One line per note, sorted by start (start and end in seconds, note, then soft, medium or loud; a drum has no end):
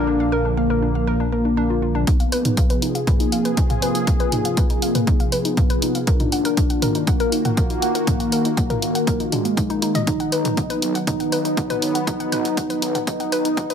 0.00 2.05 A#1 medium
0.00 2.03 D3 medium
0.00 2.03 F3 medium
0.00 2.03 A#3 medium
0.00 0.48 D4 loud
0.07 0.15 D4 medium
0.20 0.23 F5 medium
0.32 0.40 A#4 loud
0.45 0.53 D4 medium
0.57 1.23 A#3 medium
0.57 0.61 F5 medium
0.70 0.78 A#4 medium
0.82 0.90 D4 medium
0.95 0.98 F5 medium
1.07 1.15 A#4 loud
1.20 1.28 D4 medium
1.32 1.98 A#3 loud
1.32 1.38 A#4 medium
1.45 1.50 D4 medium
1.57 1.63 D4 loud
1.70 1.78 F4 medium
1.82 1.86 F4 medium
1.95 1.98 D4 loud
2.07 6.03 C3 medium
2.07 6.03 F3 medium
2.07 2.97 B3 loud
2.07 10.03 F4 medium
2.07 6.03 G#4 medium
2.07 kick loud
2.07 closed hi-hat medium
2.20 2.23 F5 medium
2.20 closed hi-hat soft
2.32 2.48 F1 medium
2.32 2.40 B4 loud
2.32 open hi-hat medium
2.45 2.53 D#4 medium
2.45 closed hi-hat soft
2.45 mid tom medium
2.57 2.61 F5 medium
2.57 kick loud
2.57 closed hi-hat medium
2.70 2.78 B4 medium
2.70 closed hi-hat soft
2.82 2.98 F1 medium
2.82 2.90 D#4 medium
2.82 open hi-hat medium
2.95 2.98 F5 medium
2.95 closed hi-hat soft
3.07 3.73 A#3 loud
3.07 3.15 B4 loud
3.07 kick loud
3.07 closed hi-hat medium
3.07 mid tom medium
3.20 3.28 D#4 medium
3.20 closed hi-hat soft
3.32 3.48 F1 medium
3.32 3.36 F5 medium
3.32 open hi-hat loud
3.45 3.53 B4 loud
3.45 closed hi-hat soft
3.57 3.65 D#4 medium
3.57 kick loud
3.57 closed hi-hat medium
3.70 3.73 F5 medium
3.70 closed hi-hat soft
3.70 mid tom medium
3.82 3.98 F1 medium
3.82 4.47 A#3 loud
3.82 3.90 B4 loud
3.82 open hi-hat medium
3.95 4.03 D#4 medium
3.95 closed hi-hat soft
4.07 4.11 F5 medium
4.07 kick loud
4.07 closed hi-hat medium
4.20 4.28 B4 medium
4.20 closed hi-hat soft
4.32 4.48 F1 medium
4.32 4.40 D#4 medium
4.32 mid tom medium
4.32 open hi-hat loud
4.45 4.48 F5 medium
4.45 closed hi-hat soft
4.57 5.22 A#3 medium
4.57 4.65 B4 loud
4.57 kick loud
4.57 closed hi-hat medium
4.70 4.78 D#4 medium
4.70 closed hi-hat soft
4.82 4.98 F1 medium
4.82 4.86 F5 medium
4.82 open hi-hat loud
4.95 5.03 B4 loud
4.95 closed hi-hat soft
4.95 mid tom medium
5.07 5.15 D#4 medium
5.07 kick loud
5.07 closed hi-hat medium
5.20 5.23 F5 medium
5.20 closed hi-hat soft
5.32 5.48 F1 medium
5.32 6.09 B3 loud
5.32 5.40 B4 loud
5.32 open hi-hat loud
5.45 5.53 D#4 medium
5.45 closed hi-hat soft
5.57 5.61 F5 medium
5.57 kick loud
5.57 closed hi-hat medium
5.57 mid tom medium
5.70 5.78 B4 loud
5.70 closed hi-hat soft
5.82 5.98 F1 medium
5.82 5.90 D#4 medium
5.82 open hi-hat loud
5.95 5.98 F5 medium
5.95 closed hi-hat soft
6.07 13.74 D#3 medium
6.07 10.03 A#3 medium
6.07 7.09 D4 loud
6.07 10.03 F#4 medium
6.07 6.15 A#4 loud
6.07 kick loud
6.07 closed hi-hat medium
6.20 6.28 D#4 medium
6.20 closed hi-hat soft
6.20 mid tom medium
6.32 6.48 D#1 loud
6.32 6.36 F#5 medium
6.32 open hi-hat loud
6.45 6.53 A#4 loud
6.45 closed hi-hat soft
6.57 6.65 D#4 medium
6.57 kick loud
6.57 closed hi-hat medium
6.70 6.73 F#5 medium
6.70 closed hi-hat soft
6.82 6.98 D#1 medium
6.82 6.90 A#4 loud
6.82 mid tom medium
6.82 open hi-hat loud
6.95 7.03 D#4 medium
6.95 closed hi-hat soft
7.07 7.73 A#3 loud
7.07 7.11 F#5 medium
7.07 kick loud
7.07 closed hi-hat medium
7.20 7.28 A#4 loud
7.20 closed hi-hat soft
7.32 7.48 D#1 medium
7.32 7.40 D#4 medium
7.32 open hi-hat loud
7.45 7.48 F#5 medium
7.45 closed hi-hat soft
7.45 mid tom medium
7.57 7.65 A#4 loud
7.57 kick loud
7.57 closed hi-hat medium
7.70 7.78 D#4 medium
7.70 closed hi-hat soft
7.82 7.98 D#1 medium
7.82 8.48 A#3 loud
7.82 7.86 F#5 medium
7.82 open hi-hat loud
7.95 8.03 A#4 loud
7.95 closed hi-hat soft
8.07 8.15 D#4 medium
8.07 kick loud
8.07 closed hi-hat medium
8.07 mid tom medium
8.20 8.23 F#5 medium
8.20 closed hi-hat soft
8.32 8.48 D#1 loud
8.32 8.40 A#4 loud
8.32 open hi-hat loud
8.45 8.53 D#4 medium
8.45 closed hi-hat soft
8.57 9.22 A#3 loud
8.57 8.61 F#5 medium
8.57 kick loud
8.57 closed hi-hat medium
8.70 8.78 A#4 loud
8.70 closed hi-hat soft
8.70 mid tom medium
8.82 8.98 D#1 medium
8.82 8.90 D#4 medium
8.82 open hi-hat loud
8.95 8.98 F#5 medium
8.95 closed hi-hat soft
9.07 9.15 A#4 loud
9.07 kick loud
9.07 closed hi-hat medium
9.20 9.28 D#4 medium
9.20 closed hi-hat soft
9.32 9.48 D#1 medium
9.32 9.97 G#3 medium
9.32 9.38 D4 medium
9.32 mid tom medium
9.32 open hi-hat loud
9.45 9.53 A#3 medium
9.45 closed hi-hat soft
9.57 9.63 D#4 loud
9.57 kick loud
9.57 closed hi-hat medium
9.70 9.75 D#4 loud
9.70 closed hi-hat soft
9.82 9.88 D#4 loud
9.82 open hi-hat loud
9.95 10.00 D#5 loud
9.95 closed hi-hat soft
9.95 mid tom medium
10.07 13.74 F#3 medium
10.07 13.74 B3 medium
10.07 10.15 D#4 medium
10.07 10.98 D#4 loud
10.07 kick loud
10.07 closed hi-hat medium
10.07 mid tom soft
10.20 10.23 F#5 medium
10.20 closed hi-hat soft
10.32 10.48 B1 loud
10.32 10.40 B4 loud
10.32 open hi-hat loud
10.45 10.53 D#4 medium
10.45 closed hi-hat soft
10.45 mid tom loud
10.57 10.61 F#5 medium
10.57 kick loud
10.57 closed hi-hat medium
10.57 mid tom soft
10.70 10.78 B4 medium
10.70 closed hi-hat soft
10.82 10.98 B1 medium
10.82 10.90 D#4 medium
10.82 open hi-hat loud
10.95 10.98 F#5 medium
10.95 closed hi-hat soft
11.07 11.15 D#4 medium
11.07 11.98 D#4 loud
11.07 kick loud
11.07 closed hi-hat medium
11.07 mid tom medium
11.07 mid tom soft
11.20 11.23 F#5 medium
11.20 closed hi-hat soft
11.32 11.48 B1 medium
11.32 11.40 B4 loud
11.32 open hi-hat loud
11.45 11.53 D#4 medium
11.45 closed hi-hat soft
11.57 11.61 F#5 medium
11.57 kick loud
11.57 closed hi-hat medium
11.57 mid tom medium
11.70 11.78 B4 medium
11.70 closed hi-hat soft
11.70 mid tom loud
11.82 11.98 B1 medium
11.82 11.90 D#4 medium
11.82 open hi-hat loud
11.95 11.98 F#5 medium
11.95 closed hi-hat soft
12.07 12.15 D#4 medium
12.07 12.98 D#4 loud
12.07 kick loud
12.07 closed hi-hat medium
12.07 mid tom medium
12.20 12.23 F#5 medium
12.20 closed hi-hat soft
12.32 12.48 B1 loud
12.32 12.40 B4 loud
12.32 mid tom medium
12.32 open hi-hat medium
12.45 12.53 D#4 medium
12.45 closed hi-hat soft
12.57 12.61 F#5 medium
12.57 kick loud
12.57 closed hi-hat medium
12.57 mid tom medium
12.70 12.78 B4 medium
12.70 closed hi-hat soft
12.82 12.98 B1 medium
12.82 12.90 D#4 medium
12.82 open hi-hat loud
12.95 12.98 F#5 medium
12.95 closed hi-hat soft
12.95 mid tom medium
13.07 13.74 D#4 loud
13.07 13.15 D#4 medium
13.07 kick loud
13.07 closed hi-hat medium
13.07 mid tom medium
13.20 13.23 F#5 medium
13.20 closed hi-hat soft
13.32 13.48 B1 medium
13.32 13.40 B4 loud
13.32 open hi-hat loud
13.45 13.53 D#4 medium
13.45 closed hi-hat soft
13.57 13.61 F#5 medium
13.57 kick loud
13.57 closed hi-hat medium
13.57 mid tom medium
13.70 13.74 B4 loud
13.70 closed hi-hat soft